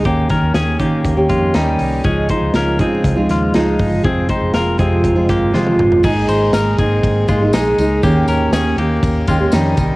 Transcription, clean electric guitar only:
X:1
M:4/4
L:1/8
Q:1/4=120
K:Ab
V:1 name="Clean electric guitar"
[B,G] [DB] [DA] [B,G]2 [A,F] [G,E]2 | [DA] [Ec] [DB] [CA]2 [A,F] [A,E]2 | [CA] [Ec] [FB] [CA]2 [B,G] [A,F]2 | [EA] [Ec] [EB] [CA]2 [A,F] [A,E]2 |
[B,G] [DB] [DA] [B,G]2 [A,F] [G,E]2 |]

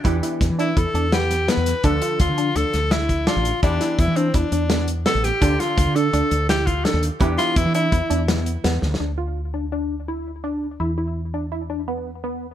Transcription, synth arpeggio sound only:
X:1
M:5/4
L:1/8
Q:1/4=168
K:Ddor
V:1 name="Synth arpeggio sound"
E E2 D E D B,2 B,2 | D F2 D D2 E2 D2 | E E2 D E D B,2 B,2 | D F2 D D2 E2 D2 |
E E2 D E D B,2 B,2 | D F2 D D2 E2 D2 | E E2 D E D B,2 B,2 |]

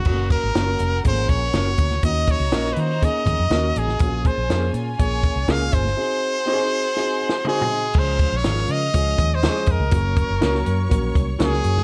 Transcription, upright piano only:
X:1
M:4/4
L:1/8
Q:1/4=122
K:Db
V:1 name="Upright piano"
[=A,B,DG] z [B,DG] z [F,A,B,D_A] z [B,DG] z | [B,DEG] z [B,DEF] z [B,DEA] z [B,DEG] z | [B,DFGA] z [B,DF=GA] z [B,DFA] z [B,DFA] z | [CEGA] z [CEG=GA] z [CE_GA] a [CEGAa] e |
[F,A,DFA] z [F,A,DEFB] z [F,A,DFA] z [F,A,DF=GA] z | [G,B,DGAB] z [G,B,DGB] z [G,B,DGB] z [G,B,DGB] z |]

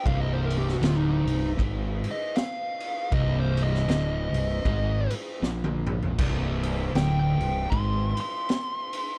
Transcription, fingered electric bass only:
X:1
M:4/4
L:1/8
Q:"Swing" 1/4=78
K:Bbmix
V:1 name="Fingered electric bass" clef=bass
C,,,2 D,,, C,,, A,,, z3 | C,,,2 D,,, C,,, A,,, z B,,,2 | C,,,2 D,,, C,,, A,,, z3 |]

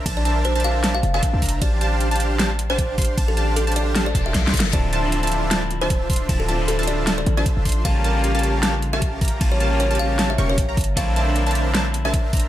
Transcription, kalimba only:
X:1
M:4/4
L:1/16
Q:"Swing 16ths" 1/4=154
K:Dm
V:1 name="Kalimba"
z d2 z c z f2 z f z f z4 | d2 z8 z c2 z3 | z A2 z A z d2 z d z e z4 | d2 z8 z c2 z3 |
z A2 z A z d2 z d z d z4 | f2 z8 z e2 z3 | z ^c2 z c z f2 z e z c z4 | f2 z8 z e2 z3 |]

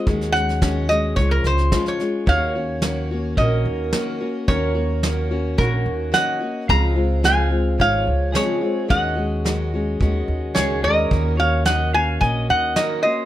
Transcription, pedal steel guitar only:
X:1
M:4/4
L:1/8
Q:1/4=109
K:Ebdor
V:1 name="Pedal steel guitar"
z8 | d4 B4 | B4 G2 e2 | f2 f2 d2 A2 |
e6 A B- | B d e f e e B c |]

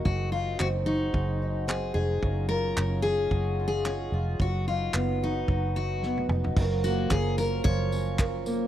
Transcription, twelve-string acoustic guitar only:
X:1
M:4/4
L:1/8
Q:"Swing 16ths" 1/4=111
K:F#
V:1 name="Twelve-string acoustic guitar"
F,, D ^B, F G, D B, D | F,, E C G F, E C E | F,, D B, F F, D B, D | [F,,A] A, C A E, C A A, |]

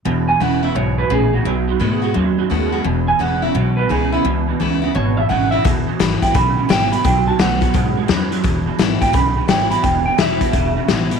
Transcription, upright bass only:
X:1
M:4/4
L:1/8
Q:"Swing" 1/4=172
K:E
V:1 name="Upright bass" clef=bass
E,,,2 E,,,2 B,,,2 ^A,,,2 | B,,,2 G,,2 D,,2 D,,2 | E,,,2 E,,,2 B,,,2 C,,2 | C,,2 C,,2 G,,,2 G,,,2 |
E,,,2 G,,, G,,, B,,,2 G,,,2 | B,,,2 B,,,2 B,,,2 E,,2 | E,,,2 G,,, G,,, B,,,2 G,,,2 | E,,,2 E,,,2 E,,,2 A,,,2 |]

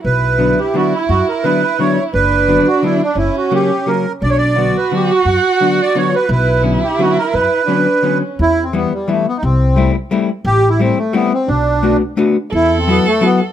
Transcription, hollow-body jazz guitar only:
X:1
M:3/4
L:1/8
Q:1/4=173
K:Bm
V:1 name="Hollow-body jazz guitar"
z2 [D,F,B,D] z [D,F,B,D] z | z2 [D,F,B,D] z [D,F,B,D] z | z2 [D,F,B,D] z [D,F,B,D] z | z2 [C,F,^A,C] z [C,F,A,C] z |
z2 [D,F,B,D] z [D,F,B,D] z | z2 [D,F,B,D] z [D,F,B,D] z | z2 [D,F,B,C] z [D,F,B,C] z | z2 [D,F,B,C] z [D,F,B,C] z |
[K:Em] z2 [E,G,B,E] z [E,G,B,E] z | z2 [G,A,CE] z [G,A,CE] z | z2 [G,A,CE] z [G,A,CE] z | z2 [A,B,DF] z [A,B,DF] z |
z2 [F,B,EF] z [F,B,EF] z |]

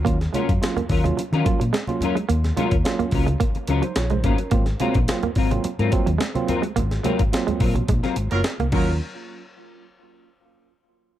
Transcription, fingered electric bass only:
X:1
M:4/4
L:1/16
Q:1/4=107
K:Ebdor
V:1 name="Fingered electric bass" clef=bass
E,,2 z G,, z2 E,,2 z E, z B,, z4 | E,,2 z E,, z2 D,,2 z2 D,, z B,,,2 A,,, z | A,,,2 z B,,, z2 A,,,2 z A,, z E,, z4 | A,,,2 z A,,, z2 B,,,2 B,,, z A,,, G,,, z C,, E,,2 |
z16 |]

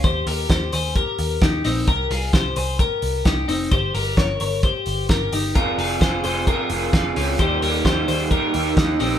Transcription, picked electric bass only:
X:1
M:4/4
L:1/16
Q:1/4=131
K:Ebmix
V:1 name="Picked electric bass" clef=bass
E,,2 E,,2 E,,2 E,,3 z E,,2 E,,2 B,,,2 | C,,2 C,,2 C,,2 C,,3 z C,,2 C,,2 F,,,2 | G,,,2 G,,,2 G,,,2 G,,,3 z G,,,2 G,,,2 G,,,2 | F,,,2 F,,,2 F,,,2 F,,,3 z F,,,2 F,,,2 D,,2 |
E,,2 E,,2 E,,2 E,,3 z E,,2 E,,2 B,,,2 |]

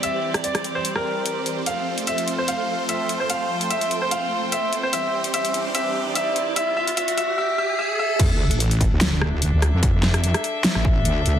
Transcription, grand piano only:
X:1
M:4/4
L:1/16
Q:"Swing 16ths" 1/4=147
K:Dm
V:1 name="Grand piano"
e3 z d2 z c z B6 z | f3 z e2 z c f3 z e2 z c | f3 z e2 z c f3 z e2 z c | e3 z e3 z e3 z e3 z |
e2 e2 e2 e2 e2 e2 e2 e2 | z16 | z16 |]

